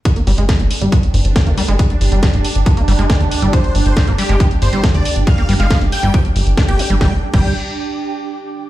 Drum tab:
CC |----------------|----------------|----------------|----------------|
HH |xxoxxxoxxxoxxxox|xxoxxxoxxxoxxxox|xxoxxxoxxxoxxxox|xxoxxxoxxxoxxxox|
SD |----o-------o---|----o-------o---|----o-------o---|----o-------o---|
BD |o---o---o---o---|o---o---o---o---|o---o---o---o---|o---o---o---o---|

CC |---x------------|
HH |----------------|
SD |o---------------|
BD |o--o------------|